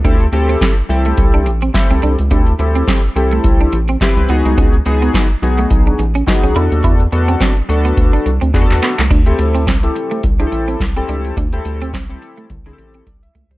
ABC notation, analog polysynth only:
X:1
M:4/4
L:1/16
Q:"Swing 16ths" 1/4=106
K:Ephr
V:1 name="Analog polysynth"
[CEGA] z [CEGA]3 z [CEGA]4 z2 [CEGA]3 z | [CEGA] z [CEGA]3 z [CEGA]4 z2 [CEGB]2 [B,^D^F^G]2- | [B,^D^F^G] z [B,DFG]3 z [B,DFG]4 z2 [B,DFG]2 [B,=DFA]2- | [B,D^FA] z [B,DFA]3 z [B,DFA]4 z2 [B,DF^GA]3 z |
z [CEGA]3 z [CEGA]3 z [CEG^GA]3 z [CE=GA]3 | z [CEGA]3 z [CEGA]3 z [CEG^GA]3 d e2 c |]